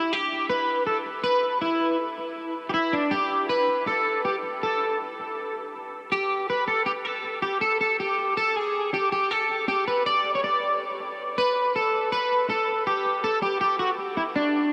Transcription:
0.00 0.13 E4 medium
0.13 0.49 G4 medium
0.50 0.86 B4 loud
0.87 0.97 A4 medium
1.24 1.61 B4 loud
1.61 1.96 E4 medium
2.69 2.73 G4 medium
2.74 2.93 E4 medium
2.93 3.12 D4 medium
3.11 3.49 G4 loud
3.49 3.84 B4 medium
3.87 4.24 A4 medium
4.25 4.35 G4 medium
4.63 4.97 A4 medium
6.12 6.49 G4 medium
6.50 6.67 B4 medium
6.68 6.85 A4 medium
6.86 6.91 G4 medium
7.05 7.42 A4 medium
7.42 7.61 G4 medium
7.61 7.79 A4 medium
7.81 7.98 A4 medium
8.00 8.34 G4 medium
8.37 8.56 A4 loud
8.56 8.93 G#4 medium
8.94 9.11 G4 medium
9.12 9.31 G4 medium
9.31 9.68 A4 medium
9.68 9.87 G4 medium
9.88 10.05 B4 medium
10.06 10.35 D5 loud
10.35 10.42 C#5 medium
10.44 10.78 D5 medium
11.38 11.75 B4 loud
11.76 12.10 A4 medium
12.12 12.49 B4 loud
12.50 12.84 A4 medium
12.87 13.24 G4 loud
13.24 13.41 A4 loud
13.42 13.60 G4 medium
13.61 13.79 G4 loud
13.79 13.90 F#4 medium
14.17 14.22 E4 medium
14.35 14.73 D4 medium

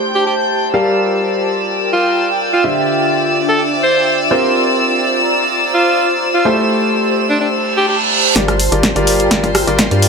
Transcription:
0.00 0.71 A3 medium
0.00 0.71 E4 medium
0.00 0.71 G4 medium
0.00 1.50 G4 medium
0.00 0.71 A4 medium
0.00 0.71 C5 medium
0.00 1.50 C5 medium
0.00 0.75 G5 medium
0.00 1.50 A5 medium
0.00 0.75 G6 medium
0.15 0.22 G4 medium
0.26 0.34 G4 medium
0.74 2.62 G3 medium
0.74 6.45 F4 medium
0.74 2.62 G4 medium
0.74 2.62 A#4 medium
0.74 2.62 D5 medium
0.74 8.37 D5 medium
0.74 2.62 F5 medium
0.74 8.37 E6 medium
1.33 2.64 A#4 medium
1.60 5.17 G5 medium
1.93 2.29 F4 medium
2.53 2.66 F4 medium
2.64 4.28 D3 medium
2.64 5.17 D4 medium
2.64 4.28 F4 medium
2.64 4.28 G4 medium
2.64 4.28 C5 medium
2.64 4.28 D5 medium
2.64 4.28 E5 medium
3.27 5.17 E5 medium
3.36 9.12 C5 medium
3.48 3.61 A4 medium
3.83 4.20 C5 medium
4.31 6.43 C4 medium
4.31 6.43 F4 medium
4.31 6.43 G4 medium
4.31 6.43 A#4 medium
4.31 6.43 C5 medium
4.92 6.45 A#5 medium
5.74 6.10 F4 medium
6.34 6.47 F4 medium
6.45 8.33 A3 medium
6.45 8.33 E4 medium
6.45 8.33 G4 medium
6.45 9.12 G4 medium
6.45 8.33 A4 medium
6.45 8.33 C5 medium
7.29 7.36 D4 medium
7.29 9.12 A5 medium
7.40 7.49 D4 medium
7.40 reverse cymbal medium
7.77 7.84 G4 medium
7.88 7.96 G4 medium
8.36 8.70 G1 medium
8.36 8.51 G3 medium
8.36 10.09 F4 medium
8.36 8.51 F4 medium
8.36 8.51 G4 medium
8.36 8.51 A#4 medium
8.36 10.09 C5 medium
8.36 8.51 D5 medium
8.36 10.09 C6 medium
8.36 kick loud
8.36 snare soft
8.36 closed hi-hat medium
8.48 cross-stick medium
8.48 closed hi-hat soft
8.60 open hi-hat loud
8.67 10.09 G5 medium
8.72 8.93 G1 loud
8.72 8.86 G3 medium
8.72 8.86 F4 medium
8.72 8.86 G4 medium
8.72 8.86 A#4 medium
8.72 8.86 D5 medium
8.72 closed hi-hat medium
8.83 kick loud
8.83 snare soft
8.83 closed hi-hat medium
8.96 9.29 G1 medium
8.96 9.28 G3 medium
8.96 9.28 F4 medium
8.96 9.28 G4 medium
8.96 9.28 A#4 medium
8.96 9.28 D5 loud
8.96 closed hi-hat soft
9.07 open hi-hat loud
9.18 10.09 A#4 medium
9.18 closed hi-hat medium
9.31 9.65 G1 medium
9.31 9.46 G3 medium
9.31 9.46 F4 medium
9.31 9.46 G4 medium
9.31 9.46 A#4 medium
9.31 9.46 D5 loud
9.31 kick loud
9.31 snare soft
9.31 closed hi-hat medium
9.44 kick medium
9.44 closed hi-hat soft
9.55 cross-stick medium
9.55 open hi-hat loud
9.67 9.89 G1 medium
9.67 9.81 G3 medium
9.67 9.81 F4 medium
9.67 9.81 G4 medium
9.67 9.81 A#4 medium
9.67 9.81 D5 loud
9.67 closed hi-hat medium
9.79 kick loud
9.79 snare medium
9.79 closed hi-hat medium
9.91 10.09 G2 medium
9.91 10.09 G3 medium
9.91 10.09 F4 medium
9.91 10.09 G4 medium
9.91 10.09 A#4 medium
9.91 10.09 D5 medium
9.91 closed hi-hat soft
10.02 open hi-hat loud

